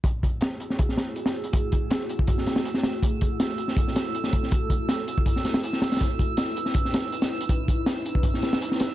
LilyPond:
<<
  \new Staff \with { instrumentName = "Synth texture" } { \time 4/4 \key fis \minor \tempo 4 = 161 e'''1~ | e'''1~ | e'''1~ | e'''1~ |
e'''1~ | e'''1 | }
  \new Staff \with { instrumentName = "Ambient pad" } { \time 4/4 \key fis \minor << { gis'1~ | gis'1 | a'1~ | a'1 |
b'1~ | b'1 | } \\ { <a e' fis'>1~ | <a e' fis'>1~ | <a e' fis'>1~ | <a e' fis'>1 |
<cis' dis'>1~ | <cis' dis'>1 | } >> }
  \new DrumStaff \with { instrumentName = "Drums" } \drummode { \time 4/4 <hh bd>8 <hh bd>8 <hh sn>8 hh16 sn16 <hh bd>16 sn16 <hh sn>8 hh16 <hh sn>8 hh16 | <hh bd>8 <hh bd>8 <hh sn>8 hh16 bd16 <hh bd>16 sn16 <hh sn>16 sn16 hh16 sn16 <hh sn>8 | <hh bd>8 <hh bd>8 <hh sn>8 hh16 sn16 <hh bd>16 sn16 <hh sn>8 hh16 sn16 <hh bd>16 sn16 | <hh bd>8 <hh bd>8 <hh sn>8 hh16 bd16 <hh bd>16 sn16 <hh sn>16 sn16 hh16 sn16 <hh sn>16 <hh sn>32 <hh sn>32 |
<hh bd>8 <hh bd>8 <hh sn>8 hh16 sn16 <hh bd>16 sn16 <hh sn>8 hh16 <hh sn>8 hh16 | <hh bd>8 <hh bd>8 <hh sn>8 hh16 bd16 <hh bd>16 sn16 <hh sn>16 sn16 hh16 sn16 <hh sn>8 | }
>>